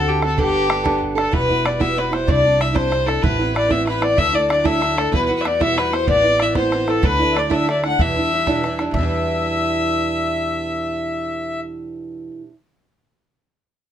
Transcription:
Already playing: D2 D3 C4 F#4 A4
0.07 G4, bodhran
0.22 C4 F#4 A4, bodhran
0.37 G1 G3 B3 D4 G4 A4, bodhran
0.41 G4
0.69 G3 B3 D4 A4, bodhran
0.83 G3 B3 D4 A4, bodhran
1.02 bodhran
1.15 B3 D4 A4, bodhran
1.20 A4
1.31 E1 E2 E3 G3 B3 E4 F#4 B4, bodhran
1.49 G3 B3 E4 F#4, bodhran
1.63 G3 B3 E4 F#4 D5, bodhran
1.80 E2 E3 G3 B3 E4 F#4 E5, bodhran
1.97 G3 B3 E4 F#4 B4
2.11 G3 B3 E4 F#4 C5, bodhran
2.27 C2 C3 G3 C4 D4 E4 D5, bodhran
2.44 C4 D4 E4
2.58 G3 C4 D4 E4 E5, bodhran
2.73 C3 G3 C4 D4 E4 C5, bodhran
2.90 G3 C4 D4 E4, bodhran
3.06 C4 D4 E4 A4, bodhran
3.22 A1 A2 E3 B3 C4 E4 B4, bodhran
3.38 B3 C4 E4, bodhran
3.53 E3 B3 C4 E4 D5, bodhran
3.69 A2 E3 B3 C4 E4 E5, bodhran
3.86 E3 B3 C4 E4 B4, bodhran
4.00 B3 C4 E4 D5, bodhran
4.15 D2 D3 F#3 A3 D4 E4 E5, bodhran
4.32 A3 D4 E4 D5, bodhran
4.49 F#3 A3 D4 E4 D5, bodhran
4.64 D3 F#3 A3 D4 E4 E5, bodhran
4.80 F#3 A3 D4 E4, bodhran
4.96 A3 D4 E4 A4, bodhran
5.12 E2 B2 G3 B3 E4 F#4 B4, bodhran
5.25 F#4 B4
5.29 G3 B3 E4, bodhran
5.36 B4
5.41 G3 E5
5.45 B3 E4 F#4 D5, bodhran
5.59 E2 B2 G3 B3 E4 F#4 E5, bodhran
5.76 G3 B3 E4 F#4 B4, bodhran
5.90 G3 B3 E4 F#4 C5, bodhran
6.06 A1 A2 E3 B3 C4 E4 D5, bodhran
6.24 B3 C4 E4, bodhran
6.39 E3 B3 C4 E4 E5, bodhran
6.50 D5
6.55 A2 E3 B3 C4 E4 C5, bodhran
6.71 E3 B3 C4 E4, bodhran
6.87 B3 C4 E4 A4, bodhran
7.02 D2 D3 F#3 A3 D4 E4 B4, bodhran
7.19 A3 D4 E4, bodhran
7.32 F#3 A3 D4 D5 E5
7.37 E4 D5, bodhran
7.50 D3 F#3 A3 D4 E4 E5, bodhran
7.54 E5
7.67 F#3 A3 D4 E4 D5, bodhran
7.84 A3 D4 E4 F#5, bodhran
7.98 E2 B2 E3 G3 D4 E4 E5, bodhran
8.16 E3 G3 D4 E4, bodhran
8.31 E3 G3 D4 E4
8.47 E2 B2 E3 G3 D4 E4, bodhran
8.63 E3 G3 D4 E4, bodhran
8.79 E3 G3 D4 E4, bodhran
8.91 E2 B2 E5, bodhran
8.95 E3 G3 E5
9.00 D4 E4

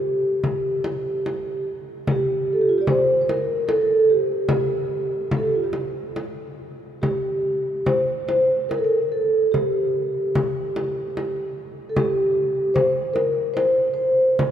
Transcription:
Already playing: G4
0.44 frame drum
0.84 frame drum
1.26 frame drum
2.07 frame drum
2.11 G4
2.53 A4
2.61 G4
2.69 F4
2.78 G4 D5
2.87 C5, frame drum
3.21 C5
3.29 A#4, frame drum
3.68 A4, frame drum
3.75 A#4
3.82 A4
4.10 G4
4.49 frame drum
5.31 frame drum
5.37 A4
5.45 G4
5.55 F4
5.64 G4
5.73 frame drum
6.16 frame drum
7.02 G4, frame drum
7.86 C5, frame drum
8.28 C5, frame drum
8.69 A#4, frame drum
8.78 A4
8.84 A#4
9.12 A4
9.52 G4, frame drum
10.35 frame drum
10.76 frame drum
11.17 frame drum
11.89 A4
11.96 G4, frame drum
12.74 C5, frame drum
13.14 A#4, frame drum
13.54 C5, frame drum
13.94 C5
14.39 frame drum

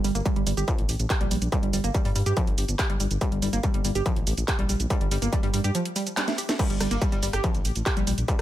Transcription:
0.04 G1 G3, open hi-hat, shaker
0.15 G1 A#3, closed hi-hat, shaker
0.26 G3, kick, closed hi-hat, shaker
0.36 G1 G3, closed hi-hat
0.47 G1 G3, open hi-hat, shaker
0.57 G1 G4, closed hi-hat, shaker
0.68 F3, kick, closed hi-hat, shaker
0.78 A1, closed hi-hat
0.89 A1, open hi-hat, shaker
1.00 A1, closed hi-hat, shaker
1.10 G4, kick, clap, closed hi-hat, shaker
1.21 A#1 G3, closed hi-hat
1.31 A#1 G3, open hi-hat, shaker
1.42 A#1, closed hi-hat, shaker
1.52 G3, kick, closed hi-hat, shaker
1.63 G1 G3, closed hi-hat
1.73 G1 G3, open hi-hat, shaker
1.84 G1 A#3, closed hi-hat, shaker
1.94 G3, kick, closed hi-hat, shaker
2.05 G2 G3, open hi-hat
2.16 G2 G3, open hi-hat, shaker
2.26 G2 G4, closed hi-hat, shaker
2.37 F3, kick, closed hi-hat, shaker
2.47 G1, closed hi-hat
2.58 G1, open hi-hat, shaker
2.69 G1, closed hi-hat, shaker
2.79 G4, kick, clap, closed hi-hat, shaker
2.90 G1 G3, closed hi-hat
3.00 G1 G3, open hi-hat, shaker
3.11 G1, closed hi-hat, shaker
3.21 G3, kick, closed hi-hat, shaker
3.32 G1 G3, closed hi-hat
3.42 G1 G3, open hi-hat, shaker
3.53 G1 A#3, closed hi-hat, shaker
3.63 G3, kick, closed hi-hat, shaker
3.74 G1 G3, closed hi-hat
3.85 G1 G3, open hi-hat, shaker
3.95 G1 G4, closed hi-hat, shaker
4.06 F3, kick, closed hi-hat, shaker
4.16 A1, closed hi-hat
4.27 A1, open hi-hat, shaker
4.38 A1, closed hi-hat, shaker
4.48 G4, kick, clap, closed hi-hat, shaker
4.59 A#1 G3, closed hi-hat
4.69 A#1 G3, open hi-hat, shaker
4.80 A#1, closed hi-hat, shaker
4.90 G3, kick, closed hi-hat, shaker
5.01 G1 G3, closed hi-hat
5.11 G1 G3, open hi-hat, shaker
5.22 G1 A#3, closed hi-hat, shaker
5.33 G3, kick, closed hi-hat, shaker
5.43 G2 G3, open hi-hat
5.54 G2 G3, open hi-hat, shaker
5.64 G2 G4, closed hi-hat, shaker
5.75 F3, closed hi-hat, shaker
5.85 closed hi-hat
5.96 G3, open hi-hat, shaker
6.07 closed hi-hat, shaker
6.17 G3, snare, clap, closed hi-hat, shaker
6.28 A3, snare, closed hi-hat
6.38 G4, open hi-hat, shaker
6.49 A3, snare, closed hi-hat, shaker
6.59 G3, kick, closed hi-hat, crash, shaker
6.70 G1 G3, closed hi-hat, shaker
6.80 G1 G3, cross-stick, open hi-hat, shaker
6.91 G1 A#3, closed hi-hat, shaker
7.02 G3, kick, closed hi-hat, shaker
7.12 G1 G3, closed hi-hat, shaker
7.23 G1 G3, open hi-hat, shaker
7.33 G1 G4, cross-stick, closed hi-hat, shaker
7.44 F3, kick, closed hi-hat, shaker
7.54 A1, closed hi-hat, shaker
7.65 A1, open hi-hat, shaker
7.76 A1, closed hi-hat, shaker
7.86 G4, kick, cross-stick, clap, closed hi-hat, shaker
7.97 A#1 G3, closed hi-hat, shaker
8.07 A#1 G3, open hi-hat, shaker
8.18 A#1, closed hi-hat, shaker
8.28 G3, kick, closed hi-hat, shaker

